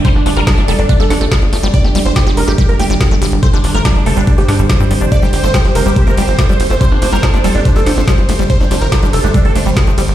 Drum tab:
RD |----------------|----------------|----------------|--x---x---x---x-|
HH |x-oxxxoxxxoxxxox|x-oxxxoxxxoxxxox|x-oxxxoxxxoxxxox|x-oxxxoxxxoxxxox|
SD |----o-----o-o---|----o-------o---|----o-----o-o---|----o-------o---|
BD |o---o---o---o---|o---o---o---o---|o---o---o---o---|o---o---o---o---|

RD |--x---x---x---x-|--x---x---x---x-|
HH |x-oxxxoxxxoxxxox|x-oxxxoxxxoxxxox|
SD |----o-----o-o---|----o-------o---|
BD |o---o---o---o---|o---o---o---o---|